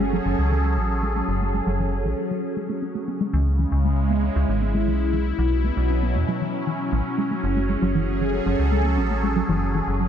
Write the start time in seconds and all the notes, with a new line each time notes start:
Already playing: F#1 F#3 C#4 G#4 A4
0.00 G#3
0.13 F#3
0.26 F#1 E3
0.39 C#2
0.51 E3
0.77 A1 F#3
1.03 G#3
1.16 A3
1.28 F#1 C#4
1.41 A3
1.54 G#3
1.67 F#1 F#3
1.80 E3
2.05 A1 E3
2.31 F#3
2.57 G#3
2.69 A3
2.82 C#4
2.95 A3
3.08 C#3 B3
3.21 G#3
3.28 G#3
3.33 C#2 E3
3.44 E4
3.59 E3
3.72 C#2
3.85 G#3
4.10 B3
4.23 C#4
4.36 C#2 E4
4.49 G#1 C#4
4.62 B3
4.74 G#3
4.87 B1 E3
5.13 B2 E3
5.31 F#3
5.39 B1 F#3
5.52 C#4
5.64 A3
5.77 B1 B3
5.90 C#4
6.03 B3
6.15 E2 A3
6.28 F#3
6.41 E3
6.67 E3
6.92 A1 F#3
7.18 G#3
7.31 A3
7.35 G#4
7.44 F#1 C#4
7.57 A3
7.69 G#3
7.82 F#1 F#3
7.88 A4
7.95 E3
8.21 E3
8.46 F#1 F#3
8.59 C#2
8.72 G#3
8.85 A3
8.98 A1 C#4
9.10 A3
9.23 G#3
9.36 F#3
9.49 F#1 E3
9.75 E3
9.87 F#1
10.00 F#3